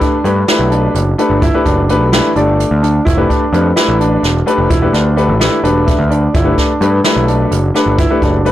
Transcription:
Already playing: grand piano A3 D4 G4 B4
0.01 grand piano D4, kick, closed hi-hat
0.24 picked electric bass G2, grand piano A3 D4 G4 B4, closed hi-hat
0.48 grand piano A3 D4 E4 G4 B4, snare, closed hi-hat
0.59 picked electric bass B1
0.71 grand piano D4, closed hi-hat
0.95 picked electric bass F#1, closed hi-hat
1.18 grand piano A3 D4 G4 B4, closed hi-hat
1.30 picked electric bass G1
1.42 grand piano E4, kick, closed hi-hat
1.54 grand piano A3 D4 G4 B4
1.65 picked electric bass F#1, grand piano D4, kick, closed hi-hat
1.89 grand piano A3 D4 G4 B4, closed hi-hat
2.01 picked electric bass B1
2.12 grand piano A3 D4 E4 G4 B4, snare, closed hi-hat
2.36 picked electric bass G1, grand piano A3 D4 G4 D5, closed hi-hat
2.60 closed hi-hat
2.71 picked electric bass D2
2.82 grand piano D4, closed hi-hat
3.05 picked electric bass F1, grand piano E4, kick, closed hi-hat
3.17 grand piano A3 D4 G4 B4
3.29 grand piano D4, kick, closed hi-hat
3.53 picked electric bass F2, grand piano A3 D4 G4 B4, closed hi-hat
3.76 grand piano A3 D4 E4 G4 B4, snare, closed hi-hat
3.89 picked electric bass A1
4.00 grand piano D4, closed hi-hat
4.23 picked electric bass E1, snare, closed hi-hat
4.46 grand piano A3 D4 G4 B4, closed hi-hat
4.58 picked electric bass F1
4.70 picked electric bass E1, grand piano E4, kick, closed hi-hat
4.82 grand piano A3 D4 G4 B4
4.93 picked electric bass D2, grand piano D4, snare, closed hi-hat
5.16 grand piano A3 D4 G4 B4, closed hi-hat
5.29 picked electric bass A1
5.39 grand piano A3 D4 E4 G4 B4, snare, closed hi-hat
5.63 picked electric bass E1, grand piano A3 D4 G4 B4, closed hi-hat
5.86 grand piano E5, kick, closed hi-hat
5.99 picked electric bass D2
6.10 grand piano D4 D5, closed hi-hat
6.34 picked electric bass G1, grand piano E4, kick, closed hi-hat
6.44 grand piano A3 D4 G4 B4
6.58 grand piano D4, kick, snare, closed hi-hat
6.80 picked electric bass G2, grand piano A3 D4 G4 B4, closed hi-hat
7.04 grand piano A3 D4 E4 G4 B4, snare, closed hi-hat
7.17 picked electric bass B1
7.28 grand piano D4, closed hi-hat
7.52 picked electric bass F#1, closed hi-hat
7.74 grand piano A3 D4 G4 B4, snare, closed hi-hat
7.86 picked electric bass G1
7.98 grand piano E4, kick, closed hi-hat
8.10 grand piano A3 D4 G4 B4
8.22 picked electric bass F#1, grand piano D4, kick, closed hi-hat
8.45 grand piano A3 D4 G4 B4, closed hi-hat

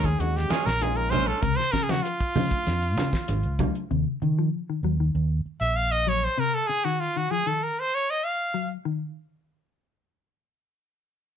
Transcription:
Already playing: fingered electric bass D#2
0.03 clean electric guitar D#3, trumpet G#4, kick, closed hi-hat
0.18 fingered electric bass D#2, tine electric piano D#3 G#3 C#4 G#4, trumpet F#4, closed hi-hat, high conga
0.36 trumpet G4, snare, closed hi-hat
0.49 clean electric guitar F#3 G#3 C#4 F4, trumpet G#4, muted fingered electric bass stroke, snare, closed hi-hat, high conga
0.66 fingered electric bass A#1, trumpet A#4, snare, closed hi-hat
0.80 tine electric piano D#3 G#3 C#4 F4, trumpet G#4, closed hi-hat, high conga
0.97 trumpet A#4, closed hi-hat
1.10 clean electric guitar F#3 G#3 C#4 F4, trumpet C5, closed hi-hat, high conga, low conga
1.27 clean electric guitar G#3 C#4 F4, trumpet A4
1.42 fingered electric bass C#2, clean electric guitar C3, trumpet A#4, kick, closed hi-hat
1.56 trumpet C5, snare, closed hi-hat
1.72 clean electric guitar C#3, fingered electric bass C#3, trumpet A#4, kick, snare, closed hi-hat
1.83 trumpet G#4
1.89 clean electric guitar F3, trumpet F#4, snare, closed hi-hat, high conga
2.03 trumpet F4, closed hi-hat
2.21 kick, closed hi-hat
2.36 fingered electric bass C#3, clean electric guitar F3, open hi-hat, high conga, low conga
2.51 kick, closed hi-hat
2.67 fingered electric bass F2, snare, closed hi-hat, high conga
2.82 closed hi-hat
2.97 fingered electric bass C#3, snare, closed hi-hat, high conga
3.13 kick, snare, closed hi-hat
3.28 fingered electric bass G#1, closed hi-hat, high conga
3.43 fingered electric bass C#2, closed hi-hat
3.59 clean electric guitar F#3, kick, closed hi-hat, low conga
3.75 closed hi-hat
3.91 fingered electric bass D#2, clean electric guitar C3
4.22 clean electric guitar C#3, fingered electric bass D#3
4.39 clean electric guitar F3
4.70 clean electric guitar D#3
4.83 fingered electric bass D#2, clean electric guitar F#3
5.00 clean electric guitar D#3
5.15 fingered electric bass D#2
5.46 muted fingered electric bass stroke
5.61 fingered electric bass A#1, trumpet E5
5.76 trumpet F5
5.92 trumpet D#5
6.07 clean electric guitar F#3, trumpet C#5
6.24 trumpet C5
6.38 clean electric guitar C3, trumpet A#4
6.54 trumpet A4
6.67 trumpet G#4, muted clean electric guitar stroke
6.85 clean electric guitar D#3, trumpet F#4
7.00 trumpet F4
7.16 clean electric guitar D#3, trumpet F#4
7.31 clean electric guitar F3, trumpet G#4
7.46 clean electric guitar D#3, trumpet A4
7.63 trumpet A#4
7.80 trumpet C5
7.94 trumpet C#5
8.11 trumpet D#5
8.24 trumpet F5
8.54 clean electric guitar F#3
8.85 clean electric guitar D#3

